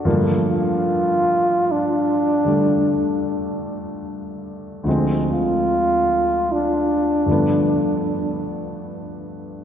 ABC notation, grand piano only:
X:1
M:4/4
L:1/8
Q:"Swing" 1/4=50
K:Gm
V:1 name="Grand piano"
D z6 z | z8 |]
V:2 name="Grand piano" clef=bass
[G,,D,F,A,B,]4 [D,G,A,]4 | [D,,D,F,_A,C]4 [G,,D,F,=A,=B,]4 |]